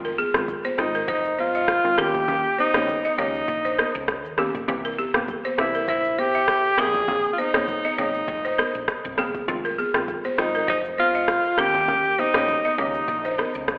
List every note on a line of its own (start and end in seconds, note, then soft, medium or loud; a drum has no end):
0.00 0.24 F1 loud
0.00 0.11 D#3 medium
0.00 0.12 G#3 medium
0.00 0.12 C4 medium
0.00 0.12 F4 loud
0.05 0.13 A#4 medium
0.05 shaker soft
0.18 0.29 G#4 medium
0.18 high conga medium
0.18 shaker soft
0.34 0.56 D#3 medium
0.34 0.56 G#3 medium
0.34 0.57 C4 medium
0.34 0.57 F4 medium
0.34 cross-stick loud
0.34 mid tom medium
0.34 high conga medium
0.34 shaker medium
0.48 kick medium
0.48 low conga medium
0.48 shaker medium
0.64 0.73 C5 medium
0.64 high conga medium
0.64 shaker soft
0.78 1.01 G#1 medium
0.78 1.01 D#3 medium
0.78 1.01 G#3 medium
0.78 1.02 C4 medium
0.78 1.07 D#4 medium
0.78 1.02 F4 medium
0.78 cross-stick medium
0.78 low conga medium
0.78 shaker medium
0.94 1.03 A#4 medium
0.94 shaker medium
1.08 1.55 F1 loud
1.08 1.37 D#4 medium
1.08 1.19 C5 medium
1.08 kick loud
1.08 shaker medium
1.25 shaker medium
1.39 2.01 F4 loud
1.39 1.49 C5 medium
1.39 high conga medium
1.54 1.78 G#1 medium
1.54 1.63 D#5 medium
1.54 shaker medium
1.68 kick medium
1.68 cross-stick loud
1.68 shaker medium
1.84 1.97 D#3 medium
1.84 2.06 G#3 medium
1.84 2.07 C4 medium
1.84 2.07 F4 medium
1.84 shaker soft
1.97 2.44 D#2 loud
1.97 2.26 D#3 medium
1.97 2.26 A#3 medium
1.97 2.26 C#4 medium
1.97 2.26 G4 loud
1.97 2.59 G4 loud
1.97 2.09 A#4 medium
1.97 cross-stick medium
1.97 high conga medium
2.15 kick medium
2.15 shaker soft
2.28 2.51 D#3 medium
2.28 2.51 A#3 medium
2.28 2.52 C#4 medium
2.28 2.52 G4 loud
2.28 kick loud
2.28 low conga medium
2.28 shaker medium
2.45 shaker soft
2.58 3.15 D#4 loud
2.58 2.69 C5 medium
2.58 high conga medium
2.58 shaker soft
2.74 2.96 D#3 medium
2.74 2.97 A#3 medium
2.74 2.97 C#4 medium
2.74 2.97 G4 medium
2.74 2.83 C#5 medium
2.74 cross-stick loud
2.74 mid tom loud
2.74 high conga medium
2.74 shaker medium
2.88 kick medium
2.88 low conga medium
2.88 shaker medium
3.04 3.13 D#5 medium
3.04 high conga medium
3.04 shaker soft
3.18 3.41 C#2 medium
3.18 3.41 D#3 medium
3.18 3.41 A#3 medium
3.18 3.42 C#4 medium
3.18 4.05 D#4 medium
3.18 3.42 G4 medium
3.18 3.29 C#5 medium
3.18 low conga medium
3.18 shaker medium
3.34 shaker medium
3.48 3.84 A#1 loud
3.48 kick loud
3.48 shaker medium
3.65 3.73 C5 medium
3.65 shaker medium
3.78 3.89 A#4 medium
3.78 cross-stick loud
3.78 high conga medium
3.94 4.25 C#2 medium
3.94 shaker medium
4.08 kick medium
4.08 cross-stick loud
4.08 shaker medium
4.25 4.48 D#2 loud
4.25 shaker soft
4.37 4.61 D#3 medium
4.37 4.61 A#3 medium
4.37 4.62 C#4 medium
4.37 4.49 G4 medium
4.37 4.62 G4 medium
4.37 cross-stick medium
4.37 high conga medium
4.55 4.65 A#1 medium
4.55 kick medium
4.55 shaker soft
4.68 5.04 C2 loud
4.68 4.91 E3 loud
4.68 4.92 A#3 medium
4.68 4.92 C4 medium
4.68 4.92 G4 loud
4.68 kick loud
4.68 low conga medium
4.68 shaker medium
4.85 4.93 A#4 medium
4.85 shaker soft
4.99 5.09 G4 medium
4.99 high conga medium
4.99 shaker soft
5.14 5.36 E3 medium
5.14 5.36 A#3 medium
5.14 5.37 C4 medium
5.14 5.37 G4 medium
5.14 cross-stick loud
5.14 mid tom loud
5.14 high conga medium
5.14 shaker medium
5.28 kick medium
5.28 low conga medium
5.28 shaker medium
5.44 5.53 C5 medium
5.44 high conga medium
5.44 shaker medium
5.58 5.88 C2 medium
5.58 5.81 E3 medium
5.58 5.81 A#3 medium
5.58 5.82 C4 medium
5.58 5.87 E4 medium
5.58 5.82 G4 medium
5.58 cross-stick loud
5.58 low conga medium
5.58 shaker medium
5.74 5.83 A#4 medium
5.74 shaker medium
5.88 6.35 A#1 loud
5.88 6.21 E4 medium
5.88 5.99 C5 medium
5.88 kick loud
5.88 shaker medium
6.04 shaker medium
6.18 6.81 G4 loud
6.18 6.29 C5 medium
6.18 high conga medium
6.34 6.58 C2 medium
6.34 6.43 E5 medium
6.34 shaker medium
6.48 kick medium
6.48 cross-stick loud
6.48 shaker medium
6.65 shaker soft
6.77 7.24 A#1 loud
6.77 7.01 C#3 medium
6.77 7.01 A#3 medium
6.77 7.02 C4 medium
6.77 7.02 G#4 medium
6.77 7.33 G#4 loud
6.77 6.88 A#4 medium
6.77 cross-stick medium
6.77 high conga medium
6.95 kick medium
6.95 shaker medium
7.08 7.31 C#3 medium
7.08 7.31 A#3 medium
7.08 7.32 C4 medium
7.08 7.32 G#4 loud
7.08 kick loud
7.08 low conga medium
7.08 shaker medium
7.24 shaker soft
7.33 7.41 F4 medium
7.38 7.99 D#4 loud
7.38 7.48 C5 medium
7.38 high conga medium
7.38 shaker soft
7.54 7.76 C#3 medium
7.54 7.76 A#3 medium
7.54 7.77 C4 medium
7.54 7.77 G#4 medium
7.54 7.63 C#5 medium
7.54 cross-stick loud
7.54 mid tom loud
7.54 high conga medium
7.54 shaker medium
7.68 kick medium
7.68 low conga medium
7.68 shaker medium
7.84 7.98 D#5 medium
7.84 high conga medium
7.84 shaker soft
7.98 8.21 G#1 medium
7.98 8.21 C#3 medium
7.98 8.21 A#3 medium
7.98 8.22 C4 medium
7.98 8.85 D#4 medium
7.98 8.22 G#4 medium
7.98 8.08 C#5 medium
7.98 low conga medium
7.98 shaker medium
8.14 shaker medium
8.28 8.64 F1 loud
8.28 kick loud
8.28 shaker medium
8.45 8.53 C5 medium
8.45 shaker medium
8.58 8.69 A#4 medium
8.58 cross-stick loud
8.58 high conga medium
8.58 shaker medium
8.74 8.85 A#1 medium
8.74 shaker medium
8.88 kick medium
8.88 cross-stick loud
8.88 shaker medium
9.05 9.15 C2 medium
9.05 mid tom medium
9.05 shaker soft
9.17 9.31 G1 medium
9.17 9.41 C#3 medium
9.17 9.42 A#3 medium
9.17 9.42 C4 medium
9.17 9.29 G#4 medium
9.17 9.42 G#4 medium
9.17 cross-stick medium
9.17 high conga medium
9.17 low conga medium
9.17 shaker soft
9.35 kick medium
9.35 shaker soft
9.48 9.84 F1 loud
9.48 9.71 D#3 medium
9.48 9.71 G#3 medium
9.48 9.72 C4 medium
9.48 9.72 F4 loud
9.48 kick loud
9.48 low conga medium
9.48 shaker medium
9.65 9.73 A#4 medium
9.65 shaker soft
9.78 9.89 G#4 medium
9.78 high conga medium
9.78 shaker soft
9.94 10.16 D#3 medium
9.94 10.17 G#3 medium
9.94 10.17 C4 medium
9.94 10.17 F4 medium
9.94 cross-stick loud
9.94 mid tom loud
9.94 high conga medium
9.94 shaker medium
10.08 kick medium
10.08 low conga medium
10.08 shaker medium
10.24 10.33 C5 medium
10.24 high conga medium
10.24 shaker soft
10.38 10.61 G#1 medium
10.38 10.61 D#3 medium
10.38 10.61 G#3 medium
10.38 10.62 C4 medium
10.38 10.67 D#4 medium
10.38 10.62 F4 medium
10.38 cross-stick loud
10.38 low conga medium
10.38 shaker medium
10.54 10.63 A#4 medium
10.54 shaker medium
10.68 11.15 F1 loud
10.68 10.83 D#4 medium
10.68 10.78 C5 medium
10.68 kick loud
10.68 shaker medium
10.85 shaker medium
10.98 11.61 F4 loud
10.98 11.08 C5 medium
10.98 high conga medium
11.14 11.38 G#1 medium
11.14 11.23 D#5 medium
11.14 shaker medium
11.28 kick medium
11.28 cross-stick loud
11.28 shaker medium
11.45 shaker soft
11.57 12.05 D#2 loud
11.57 11.81 D#3 medium
11.57 11.82 A#3 medium
11.57 11.82 C#4 medium
11.57 11.82 G4 medium
11.57 12.21 G4 loud
11.57 11.69 A#4 medium
11.57 cross-stick medium
11.57 high conga medium
11.75 kick medium
11.75 shaker medium
11.88 12.11 D#3 medium
11.88 12.12 A#3 medium
11.88 12.12 C#4 medium
11.88 12.12 G4 loud
11.88 kick loud
11.88 low conga medium
11.88 shaker medium
12.04 shaker soft
12.18 12.79 D#4 loud
12.18 12.29 C5 medium
12.18 high conga medium
12.18 shaker soft
12.34 12.56 D#3 medium
12.34 12.56 A#3 medium
12.34 12.57 C#4 medium
12.34 12.57 G4 medium
12.34 12.43 C#5 medium
12.34 cross-stick loud
12.34 mid tom loud
12.34 high conga medium
12.34 shaker medium
12.48 kick medium
12.48 low conga medium
12.48 shaker medium
12.64 12.73 D#5 medium
12.64 high conga medium
12.64 shaker soft
12.78 13.01 C#2 medium
12.78 13.01 D#3 medium
12.78 13.02 A#3 medium
12.78 13.02 C#4 medium
12.78 13.65 D#4 medium
12.78 13.02 G4 medium
12.78 12.88 C#5 medium
12.78 low conga medium
12.78 shaker medium
12.94 shaker medium
13.08 13.44 A#1 loud
13.08 kick loud
13.08 shaker medium
13.25 13.33 C5 medium
13.25 shaker medium
13.38 13.48 A#4 medium
13.38 cross-stick medium
13.38 high conga medium
13.54 13.78 C#2 medium
13.54 shaker medium
13.68 kick medium
13.68 cross-stick loud
13.68 shaker medium